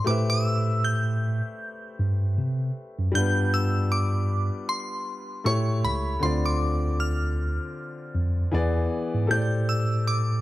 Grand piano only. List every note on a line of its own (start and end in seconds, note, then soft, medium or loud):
0.04 3.09 A3 medium
0.04 3.10 G4 medium
0.04 3.11 B4 medium
0.09 3.11 C5 medium
0.09 3.12 E5 medium
3.12 5.40 G3 medium
3.12 5.41 D4 medium
3.12 5.42 F4 medium
3.17 5.43 B3 medium
5.44 6.22 A3 medium
5.44 6.22 E4 medium
5.44 6.22 G4 medium
5.44 6.23 C#5 medium
6.19 8.47 D3 medium
6.19 8.48 C4 medium
6.19 8.49 F4 medium
6.25 8.50 D5 medium
8.52 9.29 E3 medium
8.52 9.30 B3 medium
8.52 9.30 G#4 medium
8.52 9.31 D5 medium
9.27 10.41 G4 medium
9.27 10.41 A4 medium
9.31 10.41 C5 medium
9.31 10.41 D5 medium